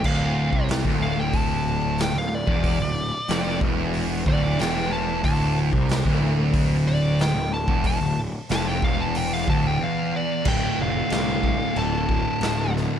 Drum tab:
CC |x---------------|----------------|----------------|----------------|
HH |----o---o---o---|o---o---o---o---|o---o---o---o---|o---o---o-------|
SD |----o-------o---|----o-------o---|----o-------o---|----o-----------|
BD |o--o-o--o------o|o-----o---o-----|o--o-o--o------o|o-----o---o-----|

CC |x---x---x---x---|
HH |----------------|
SD |----o-------o-o-|
BD |o-----o---o-----|